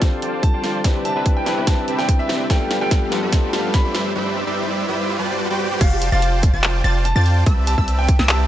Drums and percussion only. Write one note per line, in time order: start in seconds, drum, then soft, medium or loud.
0.02 kick loud
0.02 snare medium
0.02 closed hi-hat medium
0.22 closed hi-hat medium
0.43 kick loud
0.43 closed hi-hat medium
0.64 snare medium
0.64 open hi-hat medium
0.84 kick medium
0.84 snare medium
0.84 closed hi-hat medium
1.05 closed hi-hat medium
1.26 kick medium
1.26 closed hi-hat medium
1.46 snare medium
1.46 closed hi-hat medium
1.67 kick medium
1.67 snare medium
1.67 closed hi-hat medium
1.88 closed hi-hat medium
1.99 snare medium
2.08 kick loud
2.08 closed hi-hat medium
2.29 snare medium
2.29 open hi-hat medium
2.50 kick medium
2.50 snare medium
2.50 closed hi-hat medium
2.71 snare medium
2.71 closed hi-hat medium
2.91 kick loud
2.91 snare medium
2.91 closed hi-hat medium
3.12 snare medium
3.12 closed hi-hat medium
3.32 kick loud
3.32 snare medium
3.32 closed hi-hat medium
3.53 snare medium
3.53 closed hi-hat medium
3.74 kick loud
3.74 snare medium
3.74 closed hi-hat medium
3.95 snare medium
3.95 open hi-hat medium
5.81 kick loud
5.81 closed hi-hat medium
5.81 crash loud
6.02 closed hi-hat medium
6.22 closed hi-hat medium
6.43 kick loud
6.43 closed hi-hat medium
6.64 clap loud
6.64 closed hi-hat medium
6.84 closed hi-hat medium
7.05 closed hi-hat medium
7.26 open hi-hat medium
7.46 kick loud
7.46 closed hi-hat medium
7.67 closed hi-hat medium
7.78 kick medium
7.88 closed hi-hat medium
8.09 kick loud
8.09 closed hi-hat medium
8.19 snare medium
8.29 clap loud
8.29 closed hi-hat medium